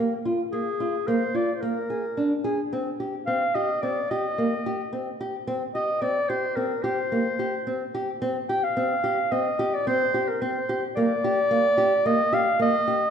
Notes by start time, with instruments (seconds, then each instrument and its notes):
Already playing: nylon-string guitar A#3
0.25 nylon-string guitar F4
0.52 nylon-string guitar A#3, clarinet G#4
0.80 nylon-string guitar F4
1.07 nylon-string guitar A#3, clarinet C5
1.34 nylon-string guitar F4, clarinet D5
1.55 clarinet C5
1.61 nylon-string guitar A#3, clarinet A#4
1.90 nylon-string guitar G#4
2.17 nylon-string guitar D4
2.44 nylon-string guitar G#4
2.73 nylon-string guitar C4
3.00 nylon-string guitar G4
3.26 nylon-string guitar C4, clarinet F5
3.55 nylon-string guitar G4, clarinet D#5
3.82 nylon-string guitar C4, clarinet D5
4.10 nylon-string guitar G4, clarinet D#5
4.38 nylon-string guitar A#3
4.66 nylon-string guitar G4
4.93 nylon-string guitar C4
5.21 nylon-string guitar G4
5.47 nylon-string guitar C4
5.75 nylon-string guitar G4, clarinet D#5
6.01 nylon-string guitar C4, clarinet D5
6.29 nylon-string guitar G4, clarinet C5
6.56 nylon-string guitar C4, clarinet A#4
6.83 nylon-string guitar G4, clarinet C5
7.12 nylon-string guitar A#3
7.39 nylon-string guitar G4
7.67 nylon-string guitar C4
7.95 nylon-string guitar G4
8.22 nylon-string guitar C4
8.49 nylon-string guitar G4, clarinet G5
8.64 clarinet F5
8.77 nylon-string guitar C4
9.04 nylon-string guitar G4
9.32 nylon-string guitar C4, clarinet D#5
9.59 nylon-string guitar G4
9.74 clarinet D5
9.87 nylon-string guitar C4, clarinet C5
10.14 nylon-string guitar G4
10.28 clarinet A#4
10.42 nylon-string guitar C4, clarinet C5
10.69 nylon-string guitar G4
10.96 nylon-string guitar A#3, clarinet D5
11.24 nylon-string guitar G4
11.51 nylon-string guitar A#3
11.78 nylon-string guitar G4
12.06 nylon-string guitar A#3, clarinet D#5
12.33 nylon-string guitar G4, clarinet F5
12.59 nylon-string guitar A#3, clarinet D#5
12.88 nylon-string guitar G4